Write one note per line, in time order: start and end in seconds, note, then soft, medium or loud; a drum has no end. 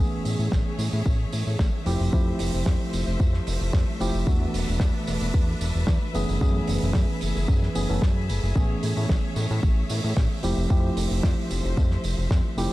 0.00 0.19 A1 loud
0.00 1.82 E3 medium
0.00 1.83 A3 medium
0.00 12.73 A3 medium
0.00 1.83 B3 medium
0.00 1.83 C#4 medium
0.00 1.83 G#4 medium
0.00 1.85 G#4 medium
0.00 1.85 C#5 medium
0.00 12.73 E5 medium
0.00 tambourine soft
0.25 0.36 A2 medium
0.25 open hi-hat medium
0.25 tambourine medium
0.39 0.49 A2 medium
0.39 tambourine medium
0.52 0.63 A1 medium
0.52 kick loud
0.52 snare loud
0.52 tambourine soft
0.79 0.90 A2 medium
0.79 open hi-hat medium
0.79 tambourine medium
0.93 1.03 A2 loud
0.93 tambourine medium
1.06 1.27 A1 loud
1.06 kick loud
1.06 tambourine soft
1.32 1.44 A2 medium
1.32 open hi-hat loud
1.32 tambourine medium
1.47 1.57 A2 medium
1.47 tambourine soft
1.59 1.70 A1 loud
1.59 kick loud
1.59 snare loud
1.59 tambourine soft
1.86 1.97 F1 medium
1.86 2.10 F3 medium
1.86 4.25 F3 medium
1.86 2.10 A3 medium
1.86 2.10 C4 medium
1.86 2.10 E4 medium
1.86 2.10 G4 loud
1.86 4.25 C5 medium
1.86 open hi-hat medium
1.86 tambourine medium
2.00 2.10 F1 loud
2.00 tambourine soft
2.12 2.34 F2 loud
2.12 3.97 F3 medium
2.12 3.97 A3 medium
2.12 3.98 C4 medium
2.12 3.98 E4 medium
2.12 3.98 G4 loud
2.12 kick loud
2.12 tambourine soft
2.39 2.51 F1 medium
2.39 open hi-hat loud
2.39 tambourine medium
2.54 2.64 F1 medium
2.54 tambourine medium
2.66 2.77 F2 medium
2.66 kick loud
2.66 snare loud
2.66 tambourine soft
2.93 3.04 F1 medium
2.93 open hi-hat medium
2.93 tambourine medium
3.07 3.17 F1 medium
3.07 tambourine medium
3.20 3.41 F2 loud
3.20 kick loud
3.20 tambourine soft
3.33 snare soft
3.47 3.58 F1 medium
3.47 open hi-hat loud
3.47 tambourine medium
3.62 3.71 F1 medium
3.62 tambourine soft
3.73 3.84 F2 medium
3.73 kick loud
3.73 snare loud
3.73 tambourine soft
4.00 4.11 F1 medium
4.00 4.24 F3 medium
4.00 4.24 A3 medium
4.00 4.24 C4 medium
4.00 4.24 E4 medium
4.00 4.25 G4 loud
4.00 open hi-hat loud
4.00 tambourine medium
4.14 4.24 F1 loud
4.14 tambourine medium
4.26 4.48 E2 loud
4.26 6.11 E3 medium
4.26 6.12 A3 medium
4.26 6.12 B3 medium
4.26 6.13 D4 medium
4.26 6.12 D4 medium
4.26 6.12 F#4 medium
4.26 8.51 B4 medium
4.26 kick loud
4.26 tambourine soft
4.54 4.65 E1 medium
4.54 open hi-hat loud
4.54 tambourine medium
4.68 4.78 E1 medium
4.68 tambourine soft
4.80 4.91 E2 medium
4.80 kick loud
4.80 snare loud
4.80 tambourine soft
5.07 5.18 E1 medium
5.07 open hi-hat loud
5.07 tambourine medium
5.21 5.31 E1 loud
5.21 tambourine medium
5.34 5.55 E2 loud
5.34 kick loud
5.34 tambourine soft
5.61 5.72 E1 medium
5.61 open hi-hat loud
5.61 tambourine loud
5.75 5.85 E1 medium
5.75 tambourine soft
5.87 5.99 E2 loud
5.87 kick loud
5.87 snare loud
5.87 tambourine soft
6.14 6.26 F#1 medium
6.14 6.38 E3 medium
6.14 6.38 A3 medium
6.14 6.38 B3 medium
6.14 6.39 C#4 medium
6.14 10.39 G#4 medium
6.14 6.39 G#4 loud
6.14 open hi-hat medium
6.14 tambourine medium
6.29 6.39 F#1 medium
6.29 tambourine medium
6.40 6.62 F#2 loud
6.40 7.72 E3 medium
6.40 7.73 A3 medium
6.40 7.73 B3 medium
6.40 7.73 C#4 medium
6.40 7.73 G#4 medium
6.40 kick loud
6.40 tambourine soft
6.68 6.79 F#1 medium
6.68 open hi-hat loud
6.68 tambourine medium
6.82 6.93 F#1 loud
6.82 tambourine medium
6.93 7.06 F#2 medium
6.93 kick loud
6.93 snare loud
6.93 tambourine soft
7.21 7.33 F#1 medium
7.21 open hi-hat loud
7.21 tambourine medium
7.36 7.46 F#1 medium
7.36 tambourine medium
7.48 7.69 F#2 loud
7.48 kick loud
7.48 tambourine soft
7.63 snare soft
7.75 7.86 F#1 medium
7.75 7.86 E3 medium
7.75 7.86 A3 medium
7.75 7.86 B3 medium
7.75 7.86 C#4 medium
7.75 7.86 G#4 medium
7.75 open hi-hat loud
7.75 tambourine loud
7.89 8.00 F#1 medium
7.89 8.01 E3 medium
7.89 8.01 A3 medium
7.89 8.02 B3 medium
7.89 8.02 C#4 medium
7.89 8.02 A4 loud
7.89 tambourine medium
8.02 8.31 F#2 medium
8.02 kick loud
8.02 snare loud
8.02 tambourine soft
8.29 8.40 F#1 loud
8.29 open hi-hat medium
8.29 tambourine medium
8.44 8.53 F#1 loud
8.44 tambourine medium
8.55 8.76 A1 loud
8.55 10.40 E3 medium
8.55 10.40 A3 medium
8.55 10.40 B3 medium
8.55 10.41 C#4 medium
8.55 10.41 G#4 medium
8.55 10.42 C#5 medium
8.55 kick loud
8.55 tambourine soft
8.83 8.94 A2 medium
8.83 open hi-hat loud
8.83 tambourine medium
8.97 9.07 A2 loud
8.97 tambourine soft
9.09 9.20 A1 medium
9.09 kick loud
9.09 snare loud
9.09 tambourine soft
9.36 9.47 A2 medium
9.36 open hi-hat loud
9.36 tambourine medium
9.51 9.60 A2 loud
9.51 tambourine soft
9.63 9.84 A1 loud
9.63 kick loud
9.63 tambourine soft
9.89 10.01 A2 medium
9.89 open hi-hat loud
9.89 tambourine loud
10.04 10.14 A2 medium
10.04 tambourine medium
10.17 10.27 A1 loud
10.17 kick loud
10.17 snare loud
10.17 tambourine soft
10.43 10.54 F1 medium
10.43 10.67 F3 medium
10.43 12.73 F3 medium
10.43 10.67 A3 medium
10.43 10.67 C4 medium
10.43 10.67 E4 medium
10.43 10.67 G4 loud
10.43 12.73 C5 medium
10.43 open hi-hat loud
10.43 tambourine medium
10.57 10.67 F1 loud
10.57 tambourine medium
10.69 10.91 F2 loud
10.69 12.54 F3 medium
10.69 12.54 A3 medium
10.69 12.55 C4 medium
10.69 12.55 E4 medium
10.69 12.55 G4 loud
10.69 kick loud
10.69 tambourine soft
10.97 11.08 F1 medium
10.97 open hi-hat loud
10.97 tambourine medium
11.11 11.21 F1 loud
11.11 tambourine soft
11.23 11.35 F2 medium
11.23 kick loud
11.23 snare loud
11.23 tambourine soft
11.51 11.61 F1 medium
11.51 open hi-hat medium
11.51 tambourine medium
11.65 11.74 F1 loud
11.65 tambourine medium
11.77 11.98 F2 loud
11.77 kick loud
11.77 tambourine soft
11.91 snare soft
12.04 12.15 F1 medium
12.04 open hi-hat medium
12.04 tambourine medium
12.18 12.28 F1 medium
12.18 tambourine soft
12.31 12.42 F2 loud
12.31 kick loud
12.31 snare loud
12.31 tambourine soft
12.57 12.68 F1 medium
12.57 12.73 F3 loud
12.57 12.73 A3 medium
12.57 12.73 C4 medium
12.57 12.73 E4 medium
12.57 12.73 G4 loud
12.57 open hi-hat medium
12.57 tambourine medium